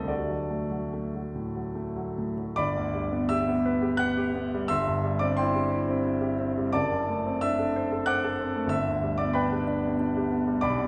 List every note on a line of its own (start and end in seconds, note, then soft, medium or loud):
0.00 0.12 C2 medium
0.00 2.50 D2 medium
0.00 0.12 G3 soft
0.00 0.12 A3 soft
0.00 0.09 A4 medium
0.00 0.12 C5 medium
0.00 0.12 D#5 medium
0.08 1.72 F#4 medium
0.08 1.71 A4 medium
0.08 1.75 D5 medium
0.30 0.63 F#3 soft
0.50 0.84 A3 soft
0.71 1.05 F#3 soft
0.93 1.27 A3 soft
1.15 1.47 F#3 soft
1.35 1.68 A2 soft
1.55 1.88 F#3 soft
1.75 2.08 A3 soft
1.96 2.29 F#3 medium
2.18 2.50 A2 soft
2.38 2.57 F#3 soft
2.56 4.66 G1 medium
2.56 3.26 D5 medium
2.56 3.25 B5 medium
2.56 3.29 D6 loud
2.77 3.05 D2 medium
2.94 3.23 G3 medium
3.12 3.40 B3 medium
3.29 3.57 G4 medium
3.29 3.95 E5 medium
3.29 3.99 E6 loud
3.48 3.75 B3 medium
3.65 3.93 B4 medium
3.82 4.10 G4 medium
3.97 4.28 B4 medium
3.97 4.66 F#5 medium
3.97 4.69 F#6 loud
4.17 4.46 G4 medium
4.35 4.63 B3 medium
4.54 4.71 G3 medium
4.68 6.68 G1 medium
4.68 5.17 E5 medium
4.68 5.17 C6 medium
4.68 5.20 E6 loud
4.87 5.14 G2 medium
5.04 5.31 G3 medium
5.19 5.47 C4 medium
5.19 5.36 D5 medium
5.19 5.37 D6 loud
5.37 5.64 E4 medium
5.37 6.35 C5 medium
5.37 6.34 G5 medium
5.37 6.38 C6 loud
5.55 5.81 G4 medium
5.72 5.98 E4 medium
5.88 6.15 C4 medium
6.04 6.31 E4 medium
6.21 6.48 G4 medium
6.39 6.66 C4 medium
6.58 6.73 G3 medium
6.73 8.68 F#1 medium
6.73 7.37 D5 medium
6.73 7.38 A5 medium
6.73 7.41 D6 loud
6.91 7.18 F#2 medium
7.08 7.35 A3 medium
7.26 7.52 C4 medium
7.41 7.69 D4 medium
7.41 8.04 E5 medium
7.41 8.07 E6 loud
7.59 7.85 A4 medium
7.76 8.01 C5 medium
7.92 8.17 A4 medium
8.06 8.33 C5 medium
8.06 8.67 F#5 medium
8.06 8.67 D6 medium
8.06 8.70 F#6 loud
8.24 8.49 A4 medium
8.40 8.65 C4 medium
8.56 8.71 A3 medium
8.67 10.56 G1 medium
8.67 9.16 E5 medium
8.67 9.18 E6 loud
8.87 9.13 D2 medium
9.03 9.29 G3 medium
9.18 9.45 B3 medium
9.18 9.34 D5 medium
9.18 9.35 D6 medium
9.33 9.61 D4 medium
9.33 10.27 B4 medium
9.33 10.27 G5 medium
9.33 10.30 B5 medium
9.52 9.77 G4 medium
9.67 9.93 D4 medium
9.85 10.10 B3 medium
9.99 10.25 D4 medium
10.17 10.41 G4 medium
10.31 10.56 B3 medium
10.47 10.63 G3 medium
10.61 10.88 B1 medium
10.61 10.88 D5 medium
10.61 10.88 B5 medium
10.61 10.88 D6 loud
10.78 10.88 B2 medium